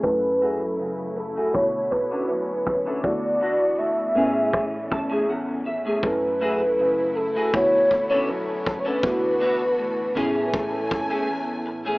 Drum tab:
BD |o---oo-o|o---oo--|o---oo-o|o--ooo--|